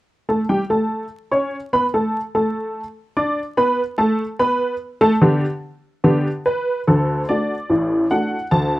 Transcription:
0.29 0.40 A3 medium
0.29 0.40 A4 medium
0.29 0.40 A5 medium
0.49 0.61 G3 medium
0.49 0.61 G4 medium
0.49 0.61 G5 medium
0.70 1.04 A3 medium
0.70 1.04 A4 medium
0.70 1.04 A5 medium
1.32 1.54 C#4 medium
1.32 1.54 C#5 medium
1.32 1.54 C#6 medium
1.73 1.84 B3 medium
1.73 1.84 B4 medium
1.73 1.84 B5 medium
1.94 2.16 A3 medium
1.94 2.16 A4 medium
1.94 2.16 A5 medium
2.35 2.80 A3 medium
2.35 2.80 A4 medium
2.35 2.80 A5 medium
3.17 3.39 D4 medium
3.17 3.39 D5 medium
3.17 3.39 D6 medium
3.57 3.80 B3 medium
3.57 3.80 B4 medium
3.57 3.80 B5 medium
3.98 4.21 A3 medium
3.98 4.20 A4 medium
3.98 4.20 A5 medium
4.39 4.73 B3 medium
4.39 4.73 B4 medium
4.39 4.73 B5 medium
5.01 5.12 A3 medium
5.01 5.12 A4 medium
5.01 5.12 A5 medium
5.21 5.44 D3 medium
5.21 5.44 B3 medium
5.21 5.44 D4 medium
5.21 5.44 G4 medium
6.04 6.27 D3 medium
6.04 6.27 B3 medium
6.04 6.27 D4 medium
6.04 6.27 G4 medium
6.46 6.79 B4 medium
6.87 7.23 D2 medium
6.87 7.23 D3 medium
6.87 7.20 A4 medium
7.29 7.52 A3 soft
7.29 7.52 D4 soft
7.29 7.52 F#4 soft
7.29 8.07 D5 medium
7.69 8.04 A1 medium
7.69 8.05 A2 medium
8.11 8.33 A3 soft
8.11 8.34 D4 soft
8.11 8.34 F#4 soft
8.11 8.43 F#5 medium
8.51 8.80 D2 medium
8.51 8.80 D3 medium
8.51 8.80 A5 medium

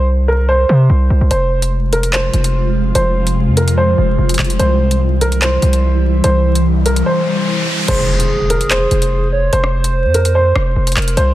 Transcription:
0.00 0.65 C2 loud
0.28 0.46 A#4 medium
0.49 1.27 C5 medium
0.69 0.89 C3 loud
0.90 1.09 C2 loud
1.10 1.21 C2 loud
1.21 1.30 C2 loud
1.31 2.30 F1 loud
1.31 7.84 C3 medium
1.31 4.56 F3 medium
1.31 4.56 G#3 medium
1.31 4.56 F4 medium
1.31 1.69 C5 loud
1.31 closed hi-hat medium
1.62 closed hi-hat medium
1.93 2.10 A#4 medium
1.93 closed hi-hat medium
2.03 closed hi-hat medium
2.13 2.91 C5 medium
2.13 clap loud
2.13 closed hi-hat medium
2.34 2.93 F1 loud
2.34 closed hi-hat medium
2.44 closed hi-hat medium
2.95 3.49 F1 loud
2.95 3.34 C5 medium
2.95 closed hi-hat medium
3.27 closed hi-hat medium
3.47 3.95 F2 loud
3.57 3.75 A#4 medium
3.57 closed hi-hat medium
3.68 closed hi-hat medium
3.77 4.56 C5 medium
3.98 4.18 F1 loud
4.18 4.38 F1 loud
4.29 closed hi-hat medium
4.34 closed hi-hat medium
4.39 4.59 F1 loud
4.39 clap loud
4.39 closed hi-hat medium
4.45 closed hi-hat soft
4.50 closed hi-hat medium
4.59 5.58 C2 loud
4.59 7.85 E3 medium
4.59 7.85 G3 medium
4.59 7.85 E4 loud
4.59 4.98 C5 loud
4.59 closed hi-hat medium
4.91 closed hi-hat medium
5.21 5.39 A#4 medium
5.21 closed hi-hat medium
5.32 closed hi-hat medium
5.42 6.20 C5 medium
5.42 clap loud
5.42 closed hi-hat medium
5.62 6.22 C2 loud
5.62 closed hi-hat medium
5.73 closed hi-hat medium
6.24 7.03 C2 loud
6.24 6.63 C5 loud
6.24 closed hi-hat medium
6.24 riser medium
6.55 closed hi-hat medium
6.86 7.03 A#4 medium
6.86 closed hi-hat medium
6.96 closed hi-hat medium
7.06 7.84 C5 medium
7.88 8.87 F1 loud
7.88 9.28 G#4 loud
7.88 8.27 C5 loud
7.88 closed hi-hat medium
7.88 crash loud
7.88 impact medium
8.20 closed hi-hat medium
8.50 8.68 A#4 medium
8.50 closed hi-hat loud
8.61 closed hi-hat medium
8.71 9.49 C5 medium
8.71 clap loud
8.71 closed hi-hat medium
8.91 9.50 F1 loud
8.91 closed hi-hat medium
9.02 closed hi-hat medium
9.32 9.52 C#5 medium
9.53 10.06 F1 loud
9.53 9.91 C5 loud
9.53 10.93 C5 loud
9.53 closed hi-hat medium
9.64 cross-stick medium
9.84 closed hi-hat medium
10.05 10.53 F2 loud
10.14 10.32 A#4 medium
10.14 closed hi-hat medium
10.25 closed hi-hat medium
10.35 11.13 C5 medium
10.56 10.75 F1 loud
10.56 cross-stick loud
10.76 10.96 F1 loud
10.87 closed hi-hat medium
10.92 closed hi-hat medium
10.96 11.16 F1 loud
10.96 11.16 A#4 medium
10.96 clap loud
10.96 closed hi-hat medium
11.02 closed hi-hat soft
11.08 closed hi-hat medium
11.17 11.34 C2 loud
11.17 11.34 C5 loud
11.17 closed hi-hat medium

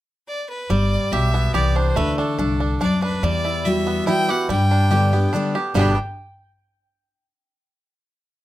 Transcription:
0.28 0.48 D5 medium
0.49 0.72 B4 medium
0.70 0.95 G1 medium
0.70 1.30 G3 medium
0.70 1.50 G3 medium
0.70 1.14 D5 loud
1.12 1.48 B1 medium
1.12 1.53 B2 medium
1.12 1.53 G4 medium
1.12 1.54 E5 medium
1.34 1.93 B3 medium
1.54 1.90 C2 medium
1.54 1.95 E3 medium
1.54 1.96 G4 medium
1.54 1.77 D5 medium
1.76 1.96 D4 medium
1.76 1.97 C5 medium
1.96 2.21 D2 medium
1.96 2.77 D3 medium
1.96 2.56 A3 medium
1.96 2.18 B4 loud
2.18 2.37 D4 medium
2.18 2.77 A4 medium
2.38 2.74 C2 medium
2.38 2.79 G2 medium
2.38 2.59 D4 medium
2.60 2.80 D4 medium
2.80 3.16 D2 medium
2.80 3.21 F#2 medium
2.80 3.01 D4 medium
2.80 3.02 D5 medium
3.02 3.23 D4 medium
3.02 3.25 B4 medium
3.22 3.98 E2 medium
3.22 4.03 E2 loud
3.22 4.49 G3 medium
3.22 3.66 D5 loud
3.45 4.03 E4 medium
3.65 4.05 E3 medium
3.65 4.06 G3 medium
3.65 4.06 B3 medium
3.65 4.06 F#4 medium
3.65 4.07 E5 medium
3.87 5.12 B3 medium
4.07 4.28 E3 medium
4.07 4.29 G3 medium
4.07 4.29 B3 medium
4.07 4.49 E4 medium
4.07 4.27 F#4 loud
4.07 4.31 G5 loud
4.29 4.49 B3 soft
4.29 4.48 F#4 medium
4.29 4.90 G4 medium
4.29 4.50 F#5 loud
4.49 5.24 G2 medium
4.49 5.29 G2 loud
4.49 5.09 G3 medium
4.49 5.30 G5 loud
4.71 5.29 D4 medium
4.91 5.12 D3 medium
4.91 5.12 G3 medium
4.91 5.13 B3 medium
4.91 5.50 G4 medium
4.91 5.12 G4 medium
5.13 5.71 B3 medium
5.13 5.33 B3 soft
5.13 5.32 G4 medium
5.33 5.54 D3 medium
5.33 5.55 G3 medium
5.33 5.55 B3 medium
5.33 5.75 D4 medium
5.33 5.54 G4 loud
5.55 5.75 B3 soft
5.55 5.74 G4 medium
5.55 5.75 G4 medium
5.74 5.95 G1 loud
5.74 5.92 G2 medium
5.74 5.92 B2 medium
5.74 5.93 D3 medium
5.74 5.95 G3 medium
5.74 5.93 G3 medium
5.74 5.93 B3 loud
5.74 5.96 B3 medium
5.74 5.93 G4 loud
5.74 5.96 G5 medium
5.79 5.97 D4 medium
5.79 5.99 G4 medium

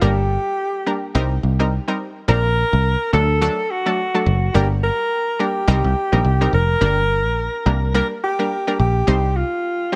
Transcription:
0.01 0.36 G1 loud
0.01 0.81 G3 medium
0.01 0.81 A#3 medium
0.01 0.81 D4 medium
0.01 1.16 G4 loud
0.01 0.81 A#4 loud
0.86 1.13 G3 medium
0.86 1.13 A#3 medium
0.86 1.13 D4 medium
0.86 1.13 A#4 medium
1.15 1.37 C2 loud
1.15 1.33 G3 loud
1.15 1.33 C4 medium
1.15 1.33 D#4 medium
1.15 1.33 A#4 loud
1.43 1.78 C2 medium
1.59 1.74 G3 medium
1.59 1.74 C4 medium
1.59 1.74 D#4 medium
1.59 1.74 A#4 medium
1.88 2.02 G3 medium
1.88 2.02 C4 medium
1.88 2.02 D#4 medium
1.88 2.02 A#4 medium
2.28 2.63 A#1 loud
2.28 3.07 F3 medium
2.28 3.07 C4 medium
2.28 3.08 D4 medium
2.28 3.08 A#4 loud
2.28 3.10 A#4 loud
2.73 2.95 C2 medium
3.13 3.48 D2 loud
3.13 3.39 F#3 medium
3.13 3.40 A3 medium
3.13 3.40 D4 medium
3.13 3.40 A4 medium
3.13 3.72 A4 loud
3.41 3.60 F#3 loud
3.41 3.60 A3 medium
3.41 3.60 D4 medium
3.41 3.60 A4 loud
3.71 4.54 F#4 loud
3.86 4.00 F#3 medium
3.86 4.00 A3 medium
3.86 4.01 D4 medium
3.86 4.01 A4 medium
4.14 4.29 F#3 medium
4.14 4.29 A3 medium
4.14 4.29 D4 medium
4.14 4.29 A4 medium
4.26 4.48 F#1 loud
4.54 4.89 G1 loud
4.54 5.34 G3 medium
4.54 5.34 A#3 medium
4.54 5.34 D4 medium
4.54 4.68 G4 loud
4.54 5.34 A#4 loud
4.83 5.42 A#4 loud
5.39 5.66 G3 medium
5.39 5.66 A#3 medium
5.39 5.66 D4 medium
5.39 6.53 G4 medium
5.39 5.66 A#4 medium
5.68 5.81 C2 loud
5.68 5.86 G3 loud
5.68 5.86 C4 medium
5.68 5.86 D#4 medium
5.68 5.86 A#4 loud
5.84 5.93 C2 medium
6.12 6.22 A#1 medium
6.12 6.27 G3 medium
6.12 6.27 C4 medium
6.12 6.27 D#4 medium
6.12 6.27 A#4 medium
6.24 6.46 C2 medium
6.41 6.55 G3 medium
6.41 6.55 C4 medium
6.41 6.55 D#4 medium
6.41 6.55 A#4 medium
6.53 6.75 F1 medium
6.53 7.91 A#4 loud
6.81 7.26 G1 loud
6.81 7.60 G3 medium
6.81 7.60 A#3 medium
6.81 7.60 D4 medium
6.81 7.61 A#4 loud
7.26 7.48 A#1 medium
7.66 8.00 C2 loud
7.66 7.92 G3 medium
7.66 7.92 A#3 medium
7.66 7.93 D4 medium
7.66 7.93 A#4 medium
7.94 8.12 G3 loud
7.94 8.12 A#3 medium
7.94 8.13 D4 medium
7.94 8.13 A#4 loud
7.94 8.08 A#4 loud
8.23 8.76 G4 loud
8.39 8.53 G3 medium
8.39 8.53 A#3 medium
8.39 8.53 D4 medium
8.39 8.54 A#4 medium
8.67 8.82 G3 medium
8.67 8.82 A#3 medium
8.67 8.82 D4 medium
8.67 8.82 A#4 medium
8.79 9.01 A#1 medium
8.79 9.38 G4 loud
9.07 9.42 C2 loud
9.07 9.87 G3 medium
9.07 9.87 C4 medium
9.07 9.87 D#4 medium
9.07 9.87 C5 loud
9.36 9.95 F4 medium
9.92 9.96 G3 medium
9.92 9.96 C4 medium
9.92 9.96 D#4 medium

